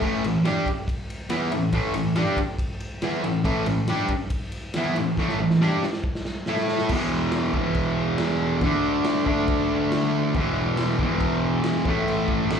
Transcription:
0.02 distorted electric guitar A2 E3 A3, kick, crash
0.24 distorted electric guitar A2 E3, ride
0.44 distorted electric guitar G3 D4 G4, snare, ride
0.66 kick, ride
0.88 kick, ride
1.10 ride
1.30 distorted electric guitar E3 B3 E4, snare, ride
1.52 distorted electric guitar A2 E3, ride
1.73 distorted electric guitar A2 E3 A3, kick, ride
1.94 distorted electric guitar A2 E3, ride
2.16 distorted electric guitar G3 D4 G4, snare, ride
2.37 kick, ride
2.59 kick, ride
2.80 ride
3.02 distorted electric guitar E3 B3 E4, snare, ride
3.24 distorted electric guitar A2 E3, ride
3.44 distorted electric guitar A2 E3 A3, kick, ride
3.66 distorted electric guitar A2 E3, ride
3.88 distorted electric guitar G3 D4 G4, snare, ride
4.08 kick, ride
4.30 kick, ride
4.52 ride
4.74 distorted electric guitar E3 B3 E4, snare, ride
4.95 distorted electric guitar A2 E3, ride
5.17 distorted electric guitar A2 E3 A3, kick, snare
5.29 snare
5.39 distorted electric guitar A2 E3
5.50 snare
5.61 distorted electric guitar G3 D4 G4, snare
5.83 snare
5.93 snare
6.04 kick
6.15 snare
6.25 snare
6.46 distorted electric guitar A3 E4 A4, snare
6.57 snare
6.68 snare
6.79 snare
6.89 distorted electric guitar E2 B2, kick, crash
6.95 distorted electric guitar E3
7.32 snare, crash
7.54 distorted electric guitar B2 E3, kick
7.58 distorted electric guitar E2
7.74 kick, crash
8.18 snare, crash
8.61 distorted electric guitar D3 A3, kick, crash
8.66 distorted electric guitar D4
9.04 snare, crash
9.26 distorted electric guitar A3 D4, kick
9.31 distorted electric guitar D3
9.48 kick, crash
9.92 snare, crash
10.34 distorted electric guitar E2 B2, kick, crash
10.39 distorted electric guitar E3
10.77 snare, crash
10.98 distorted electric guitar B2 E3, kick
11.02 distorted electric guitar E2
11.20 kick, crash
11.64 snare, crash
11.85 distorted electric guitar A2 E3 A3, kick
12.08 crash
12.28 kick
12.50 distorted electric guitar A2 E3, snare, crash
12.55 distorted electric guitar A3

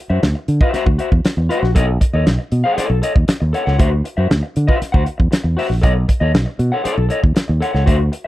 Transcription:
0.10 fingered electric bass F#2, clean electric guitar F#4 C5 E5
0.23 fingered electric bass D2, muted clean electric guitar stroke, snare, closed hi-hat
0.35 muted clean electric guitar stroke
0.48 fingered electric bass D3, closed hi-hat
0.61 clean electric guitar F#4 C5 E5, kick
0.73 clean electric guitar F#4 C5 E5, muted fingered electric bass stroke, snare, closed hi-hat
0.86 fingered electric bass D2, muted clean electric guitar stroke, kick
0.98 clean electric guitar F#4 C5 E5, closed hi-hat
1.12 fingered electric bass E2, kick
1.25 muted fingered electric bass stroke, muted clean electric guitar stroke, snare, closed hi-hat
1.37 fingered electric bass E2, muted clean electric guitar stroke
1.49 clean electric guitar F#4 C5 E5, closed hi-hat
1.63 fingered electric bass A#1, muted clean electric guitar stroke, snare
1.75 fingered electric bass B1, clean electric guitar A4 C#5 D#5, kick, closed hi-hat
1.88 muted clean electric guitar stroke
2.01 muted clean electric guitar stroke, kick, closed hi-hat
2.13 fingered electric bass D#2, clean electric guitar A4 C#5 D#5
2.26 fingered electric bass B1, muted clean electric guitar stroke, snare, closed hi-hat
2.39 muted clean electric guitar stroke
2.52 fingered electric bass B2, closed hi-hat
2.64 clean electric guitar A4 C#5 F#5
2.77 clean electric guitar A4 C#5 D#5, muted fingered electric bass stroke, snare, closed hi-hat
2.90 fingered electric bass B1, muted clean electric guitar stroke
3.02 clean electric guitar A4 C#5 D#5, closed hi-hat
3.15 fingered electric bass D#2, muted clean electric guitar stroke, kick
3.28 muted clean electric guitar stroke, muted fingered electric bass stroke, snare, closed hi-hat
3.40 fingered electric bass D#2, muted clean electric guitar stroke
3.53 clean electric guitar A4 C#5 F#5, closed hi-hat
3.66 fingered electric bass C#2, clean electric guitar A4 C#5 F#5, snare
3.78 fingered electric bass D2, clean electric guitar F#4 C5 E5, kick, closed hi-hat
3.91 muted clean electric guitar stroke
4.04 muted clean electric guitar stroke, closed hi-hat
4.17 fingered electric bass F#2, clean electric guitar F#4 C5 E5
4.30 fingered electric bass D2, muted clean electric guitar stroke, snare, closed hi-hat
4.43 muted clean electric guitar stroke
4.56 fingered electric bass D3, closed hi-hat
4.67 clean electric guitar F#4 C5 E5, kick
4.80 muted clean electric guitar stroke, muted fingered electric bass stroke, snare, closed hi-hat
4.92 fingered electric bass D2, clean electric guitar F#4 C5 F#5, kick
5.06 muted clean electric guitar stroke, closed hi-hat
5.18 fingered electric bass E2, muted clean electric guitar stroke, kick
5.31 muted clean electric guitar stroke, muted fingered electric bass stroke, snare, closed hi-hat
5.44 fingered electric bass E2, muted clean electric guitar stroke
5.57 clean electric guitar F#4 C5 E5, open hi-hat
5.69 fingered electric bass A#1, muted clean electric guitar stroke, snare
5.82 fingered electric bass B1, clean electric guitar A4 C#5 D#5, kick, closed hi-hat
5.95 muted clean electric guitar stroke
6.08 muted clean electric guitar stroke, kick, closed hi-hat
6.20 fingered electric bass D#2, clean electric guitar A4 C#5 D#5
6.34 fingered electric bass B1, muted clean electric guitar stroke, snare, closed hi-hat
6.46 muted clean electric guitar stroke
6.59 fingered electric bass B2, closed hi-hat
6.72 clean electric guitar A4 C#5 F#5
6.84 clean electric guitar A4 C#5 D#5, muted fingered electric bass stroke, snare, closed hi-hat
6.97 fingered electric bass B1, muted clean electric guitar stroke
7.09 clean electric guitar A4 C#5 D#5, closed hi-hat
7.23 fingered electric bass D#2, muted clean electric guitar stroke, kick
7.35 muted clean electric guitar stroke, muted fingered electric bass stroke, snare, closed hi-hat
7.48 fingered electric bass D#2, muted clean electric guitar stroke
7.61 clean electric guitar A4 C#5 F#5, closed hi-hat
7.73 fingered electric bass C#2, clean electric guitar A4 C#5 F#5, snare
7.86 fingered electric bass D2, clean electric guitar F#4 C5 E5, kick, closed hi-hat
7.99 muted clean electric guitar stroke
8.12 muted clean electric guitar stroke, closed hi-hat

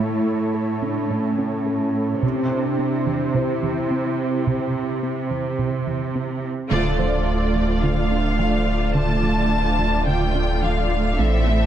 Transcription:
Already playing: cello section A2, analog synth pad A3 E4 A4 C#5, french horn section E4, grand piano A4
0.00 synth arpeggio sound A3
0.54 synth arpeggio sound A4
0.80 synth arpeggio sound C#4, french horn section D4
1.09 synth arpeggio sound A3, french horn section C#4
1.39 synth arpeggio sound C#4
1.66 synth arpeggio sound A4
2.22 cello section C3, synth arpeggio sound C3, french horn section C4, analog synth pad C4 E4 G4 C5
2.50 french horn section D4
2.79 synth arpeggio sound C4
3.07 synth arpeggio sound E3
3.34 synth arpeggio sound C3, french horn section E4, grand piano C5
3.63 synth arpeggio sound E3
3.91 synth arpeggio sound C4
4.47 synth arpeggio sound C3, french horn section C4
5.03 synth arpeggio sound C4
5.31 synth arpeggio sound E3
5.59 synth arpeggio sound C3
5.87 synth arpeggio sound E3
6.15 synth arpeggio sound C4
6.70 sub bass D1, cello section D2, synth arpeggio sound D3, viola section A3 F4, analog synth pad A3 D4 F4 D5, violin section D5
6.99 synth arpeggio sound F3, grand piano C5
7.55 synth arpeggio sound F3
7.82 synth arpeggio sound D3, violin section F5
8.11 synth arpeggio sound D4
8.39 synth arpeggio sound F3, grand piano F5
8.95 synth arpeggio sound D3, violin section A5
9.23 synth arpeggio sound F3
9.79 synth arpeggio sound F3
10.07 synth arpeggio sound D3, violin section G5
10.35 synth arpeggio sound D4
10.63 synth arpeggio sound F3, violin section F5
11.19 sub bass A1, cello section A2, synth arpeggio sound A3, analog synth pad A3 C4 E4 A4, viola section C4 A4, violin section E5
11.47 synth arpeggio sound C4

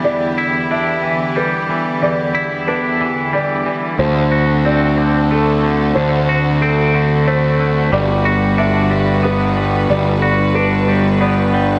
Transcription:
Already playing: string section D3 B3 E4 G4, clean electric guitar E3 G3 D4 E4
0.04 clean electric guitar E2, felt piano D5
0.38 clean electric guitar E4
0.71 clean electric guitar D4, felt piano E5
1.04 clean electric guitar E3
1.36 clean electric guitar G3, felt piano B4
1.69 clean electric guitar E3
2.02 clean electric guitar E2, felt piano D5
2.35 clean electric guitar E4
2.67 clean electric guitar D4, felt piano B4
3.01 clean electric guitar E3
3.33 clean electric guitar G3, felt piano D5
3.66 clean electric guitar E3
3.98 picked electric bass D2, clean electric guitar D3, string section C4 F#4 A4, felt piano C5
4.32 clean electric guitar F#4
4.65 clean electric guitar C4, felt piano D5
4.98 clean electric guitar D3
5.31 clean electric guitar A3, felt piano A4
5.64 clean electric guitar D3
5.95 picked electric bass D2, clean electric guitar D3, felt piano C5
6.29 clean electric guitar F#4
6.61 clean electric guitar C4, felt piano A4
6.95 clean electric guitar D3
7.27 clean electric guitar A3, felt piano C5
7.60 clean electric guitar D3
7.90 picked electric bass G1, string section D3 G3 B4, clean electric guitar G3, felt piano D5
8.25 clean electric guitar F#4
8.58 clean electric guitar D4, felt piano E5
8.91 clean electric guitar G3
9.23 clean electric guitar B3, felt piano B4
9.57 clean electric guitar G3
9.89 picked electric bass G1, clean electric guitar G3, felt piano D5
10.22 clean electric guitar F#4
10.54 clean electric guitar D4, felt piano B4
10.88 clean electric guitar G3
11.20 clean electric guitar B3, felt piano D5
11.54 clean electric guitar G3

